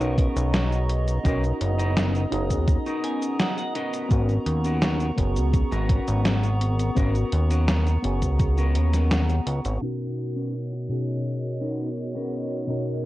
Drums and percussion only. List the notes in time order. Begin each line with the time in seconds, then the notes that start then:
0.01 closed hi-hat, cabasa
0.18 kick, closed hi-hat
0.37 closed hi-hat, cabasa
0.54 snare, closed hi-hat, cabasa
0.72 closed hi-hat, cabasa
0.89 closed hi-hat
1.08 closed hi-hat, cabasa
1.25 kick, closed hi-hat, cabasa
1.44 closed hi-hat, cabasa
1.61 closed hi-hat
1.80 closed hi-hat, cabasa
1.97 snare, closed hi-hat, cabasa
2.15 closed hi-hat, cabasa
2.32 closed hi-hat
2.50 kick, closed hi-hat, cabasa
2.68 kick, closed hi-hat, cabasa
2.86 closed hi-hat, cabasa
3.04 closed hi-hat
3.22 closed hi-hat, cabasa
3.40 snare, closed hi-hat, cabasa
3.58 closed hi-hat, cabasa
3.75 closed hi-hat
3.94 closed hi-hat, cabasa
4.11 kick, closed hi-hat, cabasa
4.29 closed hi-hat, cabasa
4.46 closed hi-hat
4.65 closed hi-hat, cabasa
4.82 snare, closed hi-hat, cabasa
5.00 closed hi-hat, cabasa
5.18 kick, closed hi-hat
5.36 closed hi-hat, cabasa
5.54 kick, closed hi-hat, cabasa
5.72 closed hi-hat, cabasa
5.89 kick, closed hi-hat
6.08 closed hi-hat, cabasa
6.25 snare, closed hi-hat, cabasa
6.43 closed hi-hat, cabasa
6.61 closed hi-hat
6.79 closed hi-hat, cabasa
6.96 kick, closed hi-hat, cabasa
7.15 closed hi-hat, cabasa
7.32 closed hi-hat
7.51 closed hi-hat, cabasa
7.68 snare, closed hi-hat, cabasa
7.87 closed hi-hat, cabasa
8.04 closed hi-hat
8.22 kick, closed hi-hat, cabasa
8.39 kick, closed hi-hat, cabasa
8.58 closed hi-hat, cabasa
8.75 closed hi-hat
8.93 snare, closed hi-hat, cabasa
9.11 snare, closed hi-hat, cabasa
9.29 closed hi-hat, cabasa
9.47 closed hi-hat
9.65 closed hi-hat, cabasa
9.82 closed hi-hat
10.18 closed hi-hat
10.37 closed hi-hat
10.54 closed hi-hat
10.72 closed hi-hat
10.90 closed hi-hat
11.08 closed hi-hat
11.26 closed hi-hat
11.44 closed hi-hat
11.61 closed hi-hat
11.80 closed hi-hat
11.97 closed hi-hat
12.15 closed hi-hat
12.33 closed hi-hat
12.51 closed hi-hat
12.68 closed hi-hat
12.87 closed hi-hat